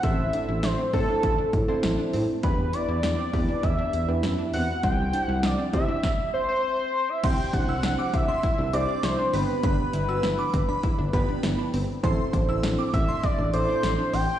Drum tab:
CC |--------|--------|--------|x-------|
HH |xxxoxxxo|xxxoxxxo|xxxx----|xxxxxxxo|
SD |--o---o-|--o---o-|--o-o---|--o---o-|
BD |o--ooo--|o--oo---|o--oo---|oo-oo---|

CC |--------|--------|
HH |xxxxxxxo|xxxxxxxo|
SD |--o---o-|--o---o-|
BD |o--ooo--|oo-oo---|